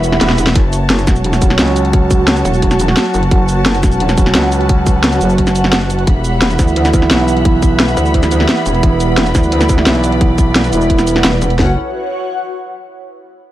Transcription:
Already playing: E1 E3 G3 B3 E4 B4 E5 B5, swell
0.04 closed hi-hat, shaker
0.12 snare
0.21 E1, snare, closed hi-hat
0.30 snare, closed hi-hat
0.38 E1 E3 B3 E4, closed hi-hat, shaker
0.47 snare, closed hi-hat
0.55 F#1 F#4 C#5 A5, kick, closed hi-hat
0.73 closed hi-hat, shaker
0.87 F#5, snare, closed hi-hat
0.93 C#5
0.99 F#3 C#4 F#4, closed hi-hat, shaker
1.07 E1, kick, snare, closed hi-hat, shaker
1.16 shaker
1.24 closed hi-hat
1.33 snare, closed hi-hat, shaker
1.42 kick, closed hi-hat, shaker
1.50 snare
1.59 C#2, snare, closed hi-hat
1.68 closed hi-hat
1.76 closed hi-hat, shaker
1.85 closed hi-hat
1.93 kick, closed hi-hat
2.11 kick, closed hi-hat, shaker
2.28 snare, closed hi-hat
2.36 F#3 C#4 F#4, closed hi-hat, shaker
2.45 E1, closed hi-hat, shaker
2.54 shaker
2.62 kick, closed hi-hat
2.71 snare, closed hi-hat, shaker
2.80 closed hi-hat, shaker
2.88 snare
2.97 snare, closed hi-hat
3.05 closed hi-hat
3.14 F#1, closed hi-hat, shaker
3.23 closed hi-hat
3.31 F#1 B4, kick, closed hi-hat
3.49 closed hi-hat, shaker
3.66 snare, closed hi-hat
3.74 F#3 C#4 F#4, closed hi-hat, shaker
3.83 E1, kick, snare, closed hi-hat, shaker
3.92 shaker
4.00 closed hi-hat
4.09 snare, closed hi-hat, shaker
4.17 kick, closed hi-hat, shaker
4.26 snare
4.35 C#2, snare, closed hi-hat
4.43 closed hi-hat
4.52 closed hi-hat, shaker
4.61 closed hi-hat
4.69 kick, closed hi-hat
4.86 kick, closed hi-hat, shaker
5.04 snare, closed hi-hat
5.12 F#3 C#4 F#4, closed hi-hat, shaker
5.21 F#1, closed hi-hat, shaker
5.30 shaker
5.38 kick, closed hi-hat
5.47 snare, closed hi-hat, shaker
5.56 closed hi-hat, shaker
5.64 snare
5.73 snare, closed hi-hat
5.81 F#3 C#4 F#4, closed hi-hat
5.90 F#3 C#4 F#4, closed hi-hat, shaker
5.99 closed hi-hat
6.07 E1 G3 E4 E5 B5, kick, closed hi-hat
6.12 B4
6.24 closed hi-hat, shaker
6.42 snare, closed hi-hat
6.50 E3 B3 E4, closed hi-hat, shaker
6.59 D2, kick, snare, closed hi-hat, shaker
6.68 shaker
6.76 closed hi-hat
6.85 snare, closed hi-hat, shaker
6.93 kick, closed hi-hat, shaker
7.02 snare
7.11 B1, snare, closed hi-hat
7.19 closed hi-hat
7.28 closed hi-hat, shaker
7.37 closed hi-hat
7.45 kick, closed hi-hat
7.62 kick, closed hi-hat, shaker
7.80 snare, closed hi-hat
7.88 E3 B3 E4, closed hi-hat, shaker
7.97 D2, closed hi-hat, shaker
8.06 shaker
8.14 kick, closed hi-hat
8.23 snare, closed hi-hat, shaker
8.31 closed hi-hat, shaker
8.40 snare
8.49 snare, closed hi-hat
8.57 closed hi-hat
8.66 E1, closed hi-hat, shaker
8.74 closed hi-hat
8.83 E1 D5, kick, closed hi-hat
9.00 closed hi-hat, shaker
9.18 snare, closed hi-hat
9.26 E3 B3 E4, closed hi-hat, shaker
9.35 D2, kick, snare, closed hi-hat, shaker
9.43 shaker
9.52 closed hi-hat
9.61 snare, closed hi-hat, shaker
9.69 kick, closed hi-hat, shaker
9.78 snare
9.86 B1, snare, closed hi-hat
9.95 closed hi-hat
10.04 closed hi-hat, shaker
10.12 closed hi-hat
10.21 kick, closed hi-hat
10.38 kick, closed hi-hat, shaker
10.55 snare, closed hi-hat
10.64 E3 B3 E4, closed hi-hat, shaker
10.73 E1, closed hi-hat, shaker
10.81 shaker
10.90 kick, closed hi-hat
10.99 snare, closed hi-hat, shaker
11.07 closed hi-hat, shaker
11.16 snare
11.24 E1, snare, closed hi-hat
11.33 E3 B3 E4, closed hi-hat
11.42 E1, closed hi-hat, shaker
11.50 closed hi-hat
11.59 F#1 F#3 C#4 F#4 A4 F#5, snare, floor tom
11.64 C#5
11.69 F#5

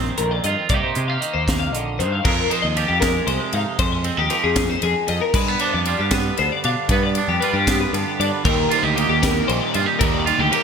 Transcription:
Already playing: D#3 G#3 C4 F4 C5
0.18 A#1 F2 A#4, closed hi-hat
0.31 D5
0.44 G2 F4 D#5, closed hi-hat
0.69 C2 C3 D#3 A#3 D5, kick, closed hi-hat
0.74 D#4 G4
0.83 C5
0.95 C3 G#3, closed hi-hat
1.08 A#3 F5
1.21 D#3 D#5, closed hi-hat
1.33 D#2 C5
1.48 C3, kick, snare, closed hi-hat
1.59 F5
1.73 A#1 D3 D#5, closed hi-hat
1.99 G2 D#3 C5, closed hi-hat
2.12 F5
2.25 F2 G#3 A#4, kick, crash
2.50 D#4 C5, ride
2.62 D#2 D#5
2.76 F3 G4, ride
2.88 F2 G4
3.01 G#3 A#4, kick, snare, ride
3.27 C2 C3 C5, ride
3.40 D5
3.53 G#2 D#4 F5, ride
3.79 F2 G#3 C5, kick, ride
3.92 D#5
4.04 C4, ride
4.17 D#2 D#4 G4
4.30 F3 G4 A#4, ride
4.44 F2 G#4
4.56 kick, snare, ride
4.69 C5
4.82 F2 G#4, ride
5.07 F2 D#5, ride
5.21 A#4
5.34 G2 G#3 B4, kick, crash
5.48 B3
5.59 D4 C5, ride
5.74 F2 D5
5.85 G3 F4, ride
5.99 G2 G4
6.11 B3 B4, kick, snare, ride
6.37 D2 D3 C5, ride
6.52 D5
6.64 B2 D4 F5, ride
6.89 G2 B3 B4, kick, ride
7.04 D5
7.15 D4, ride
7.28 F2 G4
7.41 G3 F4 B4, ride
7.54 G2 G4
7.67 B3, kick, snare, ride
7.81 B4
7.93 G2 D3 G4, ride
8.20 G2 D4 D5, ride
8.32 B4
8.44 D#2 D#3 G3 A#3 C4 D#4 G4 A#4, kick, crash
8.69 A#3 D#4 F4 G4 C5, ride
8.83 D2 G4 D#5
8.95 G3 A#3 D#4 G4, ride
9.09 D#2 G4
9.22 D#3 G3 A#3 D#4 G4 A#4, kick, snare, ride
9.48 A#1 A#2 G3 A#3 D#4 G4 C5, ride
9.61 D5
9.74 G2 F4 D#5, ride
9.86 G4
9.99 D#2 D#3 G3 A#3 D#4 A#4, kick, ride
10.03 G4
10.14 D5
10.26 A#3 D#4 F4 G4, ride
10.39 D2 G4
10.51 G3 A#3 D#4 G4 A#4, ride

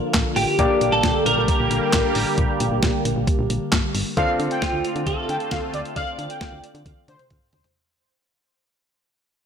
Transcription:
Already playing: D3 F3 A#3 D4 F4 A5
0.14 A1, kick, snare, clap, closed hi-hat
0.36 A1 G4, open hi-hat
0.58 A#1 G3 A#3 D4 G4 D5, kick, closed hi-hat
0.81 A#1, closed hi-hat
0.92 A#1 A4
1.03 A#1, kick, snare, closed hi-hat
1.26 A#1 A#4, closed hi-hat
1.37 A#1
1.48 kick, closed hi-hat
1.60 A#1
1.71 A#1, closed hi-hat
1.93 A1, kick, snare, clap, closed hi-hat
2.15 A1, open hi-hat
2.38 A#1, kick, closed hi-hat
2.60 A#1, closed hi-hat
2.72 A#1
2.83 A#1, kick, snare, closed hi-hat
3.05 A#1, closed hi-hat
3.16 A#1
3.27 kick, closed hi-hat
3.39 A#1
3.50 A#1, closed hi-hat
3.72 G1, kick, snare, clap, closed hi-hat
3.95 G1, open hi-hat
4.17 D2 D3 A3 C4 D4 F4 A4 F5, kick, closed hi-hat
4.39 D3, closed hi-hat
4.51 G5, closed hi-hat
4.62 F4, kick, snare, closed hi-hat
4.73 D2
4.85 closed hi-hat
4.96 D3, closed hi-hat
5.07 D2 A4, kick, closed hi-hat
5.29 D3 G5, closed hi-hat
5.40 closed hi-hat
5.51 D2 F5, kick, snare, closed hi-hat
5.74 D2 D5, closed hi-hat
5.85 closed hi-hat
5.96 D2 D5 F5, kick, closed hi-hat
6.19 D3, closed hi-hat
6.30 G5, closed hi-hat
6.41 kick, snare, closed hi-hat
6.52 D2
6.64 closed hi-hat
6.75 D3, closed hi-hat
6.86 D2, kick, closed hi-hat, high tom
7.08 D3 C5, closed hi-hat, mid tom
7.19 closed hi-hat, mid tom
7.30 D2, kick, closed hi-hat, mid tom
7.53 D2, closed hi-hat, floor tom
7.64 closed hi-hat, floor tom

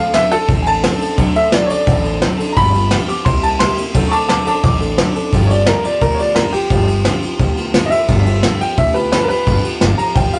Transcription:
Already playing: D2 A4 F5
0.00 C4 D4
0.14 D3 F#3 C4 D4 A4 E5, snare, ride
0.31 C4 D4 A4, muted upright bass stroke, ride
0.49 A1 F#3 C4 D4 A4, kick, ride
0.62 G#5, ride
0.67 C4 D4 A4 A5
0.84 D3 F#3 C4 D4 A4, snare, ride
1.01 C4 D4 A4, muted upright bass stroke, ride
1.18 D2 D3 F#3 C4 D4 A4, kick, ride
1.35 C4 D4 A4 E5, ride
1.52 D3 F#3 C4 D4 A4 D5, snare, ride
1.66 C#5, ride
1.70 C4 D4 A4 D5, muted upright bass stroke
1.87 A1 F#3 C4 D4 A4, kick, ride
2.04 C4 D4 A4, ride
2.22 D3 F#3 C4 D4 A4, snare, ride
2.39 C4 D4 A4, muted upright bass stroke, ride
2.52 G2 D3 F3 A#5
2.56 G1 B3 F4 G4 B5, kick, ride
2.74 F3 B3 F4 G4, ride
2.91 G2 D3 F3 B3 F4 G4, snare, ride
3.08 F3 B3 F4 G4 D6, muted upright bass stroke, ride
3.25 C2 G3 A#3 E4 G4 C6, kick, ride
3.42 A#3 E4 G4 A5, ride
3.59 C3 G3 A#3 E4 G4 C6, snare, ride
3.76 A#3 E4 G4, muted upright bass stroke, ride
3.93 D2 D3 F#3 C4 D4 A4, kick, ride
4.08 A4 A5 C#6
4.12 C4 D4 D6, ride
4.29 D3 F#3 C4 D4 A4 A5 D6, snare, ride
4.45 C4 D4 A4 A5 D6, muted upright bass stroke, ride
4.63 A1 F#3 C4 D4 A4 D6, kick, ride
4.81 C4 D4 A4, ride
4.98 D3 F#3 C4 D4 A4, snare, ride
5.15 C4 D4 A4, muted upright bass stroke, ride
5.33 G1 G2 D3 F3 B3 F4 G4, kick, ride
5.46 G4 C#5, ride
5.51 F3 B3 F4 D5
5.66 G2 D3 F3 B3 F4 G4 A#4, snare, ride
5.84 F3 B3 F4 G4 D5, muted upright bass stroke, ride
6.01 D2 F3 B3 F4 G4 A#4, kick, ride
6.15 C#5
6.19 F3 B3 F4 G4 D5, ride
6.35 G2 D3 F3 B3 F4 G4 A#4, snare, ride
6.53 F3 B3 F4 G4, muted upright bass stroke, ride
6.70 G1 G2 D3 F3 B3 F4 G4, kick, ride
6.88 F3 B3 F4 G4, ride
7.05 G2 D3 F3 B3 F4 G4, snare, ride
7.22 F3 B3 F4 G4, muted upright bass stroke, ride
7.39 D2 F3 B3 F4 G4, kick, ride
7.56 F3 B3 F4 G4, ride
7.74 G2 D3 F3 B3 F4 G4, snare, ride
7.86 D#5
7.90 F3 B3 F4 G4 E5, muted upright bass stroke, ride
8.08 G1 G2 D3 F3 B3 F4 G4, kick, ride
8.26 F3 B3 F4 G4, ride
8.43 G2 D3 F3 B3 F4 G4, snare, ride
8.60 F3 B3 F4 G4 G5, muted upright bass stroke, ride
8.77 D2 F3 B3 F4 G4 E5, kick, ride
8.94 F3 B3 F4 G4 B4, ride
9.12 G2 D3 F3 B3 F4 G4 B4, snare, ride
9.24 A#4
9.28 F3 B3 F4 G4 B4, muted upright bass stroke, ride
9.46 G1 G2 D3 F3 B3 F4 G4, kick, ride
9.64 F3 B3 F4 G4, ride
9.81 G1 G2 D3 F3 B3 F4 G4, snare, ride
9.98 F3 B3 F4 G4 A#5, ride
10.15 A1 F3 B3 F4 G4 G5, kick, ride
10.33 F3 B3 F4 G4 F5, muted upright bass stroke, ride

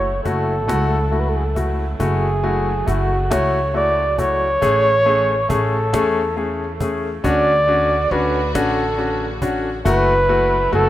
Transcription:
Already playing: F#1 C#3 F#3 A3 E4 C#5
0.24 F#1 A3 E4 F#4 A4, cajon bass, cajon slap
0.68 C#2 A3 E4 F#4, cajon slap
1.11 A3 E4 F#4, cajon slap
1.20 B4
1.29 A4
1.37 G#4
1.46 A4
1.55 A3 E4 F#4, cajon bass
2.00 F#1 A3 E4 F#4 G#4, cajon bass
2.43 A3 E4 F#4, cajon slap
2.86 F#1 A3 E4 F#4, cajon bass, cajon slap
3.30 C#2 A3 E4 F#4 C#5, cajon slap
3.74 A3 E4 F#4 D5, cajon slap
4.18 A3 E4 F#4 C#5, cajon bass
4.61 A1 E3 A3 C#4 G#4, cajon bass
5.05 A3 C#4 G#4, cajon slap
5.49 A1 A3 C#4 G#4 A4, cajon bass, cajon slap
5.93 E2 A3 C#4 G#4, cajon slap
6.37 A3 C#4 G#4, cajon slap
6.80 A3 C#4 G#4, cajon bass
7.23 D2 C#3 D3 C#4 D4 F#4 D5, cajon bass
7.68 C#4 D4 F#4, cajon slap
8.11 D2 C#4 D4 F#4 B4, cajon slap
8.55 A1 C#4 D4 F#4 A4, cajon slap
8.98 C#4 D4 F#4, cajon slap
9.42 C#4 D4 F#4, cajon bass
9.85 F#1 F#3 A3 C#4 E4 F#4 B4, cajon bass
10.29 A3 E4 F#4, cajon slap
10.72 F#1 A3 E4 F#4 A4, cajon slap

